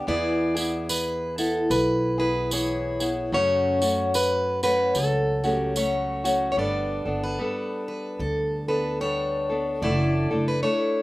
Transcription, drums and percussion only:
0.57 tambourine medium
0.89 tambourine medium
1.38 tambourine medium
1.71 tambourine medium
2.51 tambourine medium
3.00 tambourine medium
3.82 tambourine medium
4.14 tambourine medium
4.63 tambourine medium
4.95 tambourine medium
5.44 tambourine soft
5.76 tambourine medium
6.25 tambourine medium

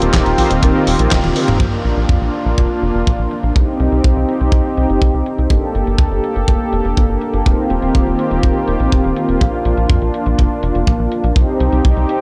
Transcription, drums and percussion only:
0.02 closed hi-hat medium
0.14 kick loud
0.14 snare loud
0.14 clap loud
0.14 closed hi-hat medium
0.26 closed hi-hat soft
0.38 kick medium
0.38 snare medium
0.38 open hi-hat loud
0.51 closed hi-hat medium
0.63 kick loud
0.63 closed hi-hat medium
0.87 open hi-hat loud
0.99 closed hi-hat medium
1.11 kick loud
1.11 snare loud
1.11 clap loud
1.11 closed hi-hat medium
1.11 high tom medium
1.24 closed hi-hat soft
1.24 high tom medium
1.36 open hi-hat loud
1.48 closed hi-hat medium
1.48 mid tom medium
1.60 kick loud
1.85 closed hi-hat medium
1.97 closed hi-hat medium
2.09 kick loud
2.21 closed hi-hat soft
2.34 closed hi-hat medium
2.46 closed hi-hat medium
2.58 kick loud
2.82 closed hi-hat medium
2.95 closed hi-hat medium
3.07 kick loud
3.07 closed hi-hat medium
3.31 closed hi-hat medium
3.43 closed hi-hat medium
3.55 kick loud
3.55 closed hi-hat medium
3.80 closed hi-hat medium
3.92 closed hi-hat soft
4.04 kick loud
4.04 closed hi-hat medium
4.16 closed hi-hat soft
4.29 closed hi-hat medium
4.41 closed hi-hat medium
4.52 kick loud
4.77 closed hi-hat medium
4.90 closed hi-hat soft
5.02 kick loud
5.02 closed hi-hat medium
5.26 closed hi-hat medium
5.38 closed hi-hat medium
5.50 kick loud
5.50 closed hi-hat medium
5.75 closed hi-hat medium
5.87 closed hi-hat soft
5.98 kick loud
5.98 closed hi-hat medium
6.12 closed hi-hat soft
6.24 closed hi-hat medium
6.36 closed hi-hat soft
6.48 kick loud
6.48 closed hi-hat medium
6.73 closed hi-hat medium
6.85 closed hi-hat soft
6.97 kick loud
6.97 closed hi-hat medium
7.21 closed hi-hat medium
7.33 closed hi-hat soft
7.46 kick loud
7.46 closed hi-hat medium
7.70 closed hi-hat medium
7.82 closed hi-hat soft
7.94 kick loud
7.94 closed hi-hat medium
8.07 closed hi-hat soft
8.19 closed hi-hat medium
8.31 closed hi-hat soft
8.43 kick loud
8.43 closed hi-hat medium
8.68 closed hi-hat medium
8.80 closed hi-hat soft
8.92 kick loud
8.92 closed hi-hat medium
9.04 closed hi-hat soft
9.16 closed hi-hat medium
9.29 closed hi-hat soft
9.41 kick loud
9.41 closed hi-hat medium
9.65 closed hi-hat medium
9.77 closed hi-hat soft
9.90 kick loud
9.90 closed hi-hat medium
10.02 closed hi-hat soft
10.14 closed hi-hat medium
10.26 closed hi-hat soft
10.38 kick loud
10.38 closed hi-hat medium
10.63 closed hi-hat medium
10.75 closed hi-hat soft
10.87 kick loud
10.87 closed hi-hat medium
11.12 closed hi-hat medium
11.24 closed hi-hat soft
11.36 kick loud
11.36 closed hi-hat medium
11.60 closed hi-hat medium
11.73 closed hi-hat soft
11.85 kick loud
11.85 closed hi-hat medium
11.97 closed hi-hat soft
12.09 closed hi-hat medium

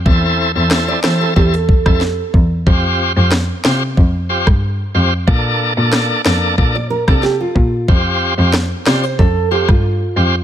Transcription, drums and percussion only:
0.06 kick loud
0.71 cross-stick medium
0.71 snare loud
1.04 cross-stick medium
1.04 snare loud
1.36 kick medium
1.69 kick loud
1.86 kick loud
1.86 cross-stick loud
2.01 snare medium
2.34 kick medium
2.67 kick loud
3.32 cross-stick medium
3.32 snare loud
3.65 cross-stick medium
3.65 snare loud
3.97 kick medium
4.47 kick medium
4.47 cross-stick loud
5.28 kick loud
5.93 cross-stick medium
5.93 snare loud
6.26 cross-stick medium
6.26 snare loud
6.58 kick medium
7.08 kick medium
7.08 cross-stick loud
7.23 snare medium
7.56 kick medium
7.88 kick loud
8.53 cross-stick medium
8.53 snare loud
8.87 cross-stick medium
8.87 snare loud
9.19 kick medium
9.69 kick loud
9.69 cross-stick medium

